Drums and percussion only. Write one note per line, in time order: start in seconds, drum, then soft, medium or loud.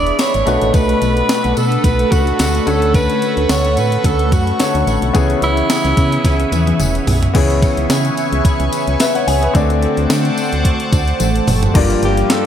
0.07 closed hi-hat soft
0.19 snare loud
0.19 closed hi-hat medium
0.19 tambourine medium
0.34 closed hi-hat soft
0.46 closed hi-hat medium
0.46 tambourine soft
0.62 closed hi-hat medium
0.74 kick loud
0.74 closed hi-hat medium
0.74 tambourine soft
0.89 closed hi-hat medium
1.02 closed hi-hat medium
1.02 tambourine soft
1.17 closed hi-hat medium
1.29 snare loud
1.29 closed hi-hat medium
1.29 tambourine medium
1.44 closed hi-hat soft
1.57 closed hi-hat medium
1.57 tambourine soft
1.72 closed hi-hat medium
1.84 kick medium
1.84 closed hi-hat medium
1.84 tambourine soft
1.99 closed hi-hat soft
2.12 kick medium
2.12 closed hi-hat medium
2.12 tambourine soft
2.27 closed hi-hat soft
2.39 snare loud
2.39 closed hi-hat medium
2.39 tambourine medium
2.55 closed hi-hat medium
2.67 closed hi-hat medium
2.67 tambourine soft
2.82 closed hi-hat medium
2.94 kick loud
2.94 closed hi-hat medium
2.94 tambourine soft
3.10 closed hi-hat medium
3.22 closed hi-hat medium
3.22 tambourine soft
3.37 closed hi-hat medium
3.49 snare loud
3.49 closed hi-hat medium
3.49 tambourine medium
3.65 closed hi-hat soft
3.77 closed hi-hat medium
3.77 tambourine soft
3.92 closed hi-hat medium
4.04 kick medium
4.04 closed hi-hat medium
4.04 tambourine soft
4.19 closed hi-hat soft
4.32 kick loud
4.32 closed hi-hat medium
4.32 tambourine soft
4.47 closed hi-hat soft
4.60 snare loud
4.60 closed hi-hat medium
4.60 tambourine medium
4.75 closed hi-hat medium
4.87 closed hi-hat medium
4.87 tambourine soft
5.02 closed hi-hat medium
5.15 kick loud
5.15 closed hi-hat medium
5.15 tambourine soft
5.30 closed hi-hat medium
5.42 closed hi-hat medium
5.42 tambourine soft
5.57 closed hi-hat medium
5.70 snare loud
5.70 closed hi-hat medium
5.70 tambourine medium
5.85 closed hi-hat soft
5.97 kick loud
5.97 closed hi-hat medium
5.97 tambourine soft
6.12 closed hi-hat medium
6.25 kick medium
6.25 snare medium
6.25 closed hi-hat medium
6.25 tambourine soft
6.40 closed hi-hat soft
6.52 closed hi-hat medium
6.52 high tom medium
6.52 tambourine soft
6.67 closed hi-hat soft
6.67 high tom medium
6.80 closed hi-hat medium
6.80 mid tom medium
6.80 tambourine medium
6.95 closed hi-hat medium
7.07 floor tom loud
7.07 open hi-hat medium
7.07 tambourine soft
7.23 closed hi-hat medium
7.23 floor tom medium
7.35 kick loud
7.35 closed hi-hat medium
7.35 crash medium
7.35 tambourine soft
7.50 closed hi-hat medium
7.62 kick medium
7.62 closed hi-hat medium
7.62 tambourine soft
7.77 closed hi-hat soft
7.90 snare loud
7.90 closed hi-hat medium
7.90 tambourine medium
8.05 closed hi-hat soft
8.17 closed hi-hat medium
8.17 tambourine soft
8.33 closed hi-hat medium
8.45 kick loud
8.45 closed hi-hat medium
8.45 tambourine soft
8.60 closed hi-hat soft
8.73 closed hi-hat medium
8.73 tambourine soft
8.87 closed hi-hat soft
9.00 snare loud
9.00 closed hi-hat medium
9.00 tambourine medium
9.15 closed hi-hat medium
9.28 open hi-hat medium
9.28 tambourine soft
9.43 closed hi-hat medium
9.55 kick loud
9.55 closed hi-hat medium
9.55 tambourine soft
9.70 closed hi-hat medium
9.83 closed hi-hat medium
9.97 closed hi-hat medium
10.10 snare loud
10.10 closed hi-hat medium
10.10 tambourine medium
10.25 closed hi-hat soft
10.37 closed hi-hat medium
10.37 tambourine soft
10.53 closed hi-hat medium
10.65 kick loud
10.65 closed hi-hat loud
10.80 closed hi-hat soft
10.93 kick loud
10.93 closed hi-hat medium
10.93 tambourine soft
11.08 closed hi-hat soft
11.20 closed hi-hat medium
11.20 high tom medium
11.20 tambourine medium
11.36 closed hi-hat medium
11.47 mid tom medium
11.47 open hi-hat medium
11.47 tambourine soft
11.63 closed hi-hat medium
11.63 floor tom medium
11.75 kick loud
11.75 closed hi-hat medium
11.75 crash loud
11.90 closed hi-hat medium
12.03 closed hi-hat medium
12.17 closed hi-hat medium
12.30 snare loud
12.30 closed hi-hat medium
12.30 tambourine medium